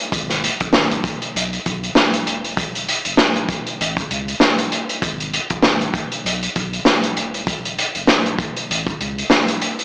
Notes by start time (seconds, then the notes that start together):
0.12 G#1, kick, closed hi-hat
0.30 snare, closed hi-hat
0.44 closed hi-hat
0.60 F#1, kick, closed hi-hat
0.73 G#1, snare
0.91 closed hi-hat
1.04 kick, closed hi-hat
1.22 closed hi-hat
1.35 B1, closed hi-hat
1.53 closed hi-hat
1.66 B1, kick, closed hi-hat
1.83 closed hi-hat
1.95 snare
2.13 closed hi-hat
2.27 E1, closed hi-hat
2.44 closed hi-hat
2.57 kick, closed hi-hat
2.75 closed hi-hat
2.88 closed hi-hat
3.05 F#1, closed hi-hat
3.17 E1, snare
3.36 closed hi-hat
3.49 kick, closed hi-hat
3.67 closed hi-hat
3.80 A1, closed hi-hat
3.97 kick, closed hi-hat
4.10 C#2, closed hi-hat
4.28 closed hi-hat
4.40 snare
4.58 closed hi-hat
4.72 closed hi-hat
4.89 closed hi-hat
5.02 G#1, kick, closed hi-hat
5.20 closed hi-hat
5.33 closed hi-hat
5.50 F#1, kick, closed hi-hat
5.63 G#1, snare
5.81 closed hi-hat
5.94 kick, closed hi-hat
6.12 closed hi-hat
6.24 B1, closed hi-hat
6.43 closed hi-hat
6.56 B1, kick, closed hi-hat
6.73 closed hi-hat
6.85 snare
7.03 closed hi-hat
7.17 E1, closed hi-hat
7.34 closed hi-hat
7.47 kick, closed hi-hat
7.65 closed hi-hat
7.78 closed hi-hat
7.95 F#1, closed hi-hat
8.07 E1, snare
8.26 closed hi-hat
8.39 kick, closed hi-hat
8.56 closed hi-hat
8.70 A1, closed hi-hat
8.87 kick, closed hi-hat
9.00 C#2, closed hi-hat
9.18 closed hi-hat
9.30 snare
9.48 closed hi-hat
9.61 closed hi-hat
9.79 closed hi-hat